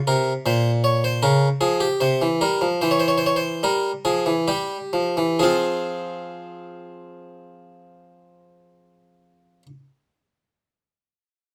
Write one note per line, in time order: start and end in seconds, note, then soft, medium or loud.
0.07 0.32 C3 medium
0.07 0.31 A#4 medium
0.46 1.20 A#2 medium
0.46 0.70 C5 medium
0.84 1.03 C#5 medium
1.04 1.23 C5 medium
1.23 1.47 C#3 medium
1.23 1.47 A#4 medium
1.61 1.85 F3 medium
1.61 1.80 G#4 medium
1.80 2.00 G4 medium
2.00 2.20 C3 medium
2.00 2.25 C5 medium
2.22 2.41 E3 medium
2.41 2.61 G3 medium
2.41 2.66 A#4 medium
2.61 2.81 F3 medium
2.81 3.62 E3 medium
2.81 2.90 C5 medium
2.91 3.00 C#5 medium
2.99 3.09 C5 medium
3.08 3.17 C#5 medium
3.18 3.27 C5 medium
3.26 3.36 C#5 medium
3.36 3.63 C5 medium
3.63 3.90 G3 medium
3.63 3.90 A#4 medium
4.05 4.27 F3 medium
4.05 4.32 G#4 medium
4.26 4.48 E3 medium
4.48 4.76 G3 medium
4.48 5.36 G4 medium
4.93 5.16 F3 medium
5.17 5.39 E3 medium
5.39 9.63 F3 medium
5.39 9.66 C4 medium
5.39 9.66 F4 medium
5.39 9.63 G#4 medium